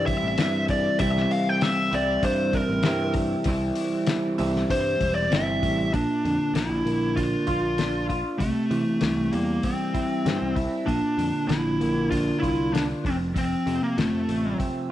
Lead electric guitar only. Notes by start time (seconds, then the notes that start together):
0.06 E5
0.70 D5
1.00 E5
1.31 F5
1.49 G5
1.63 E5
1.95 D5
2.25 C5
2.54 A#4
4.71 C5
5.15 D5
5.34 E5
5.94 D4
6.55 E4
7.16 F4
8.38 A3
9.33 A#3
9.65 C4
10.86 D4
11.48 E4
12.10 F4
12.39 E4
12.73 D4
13.06 C4
13.38 C4
13.83 A#3
13.98 A3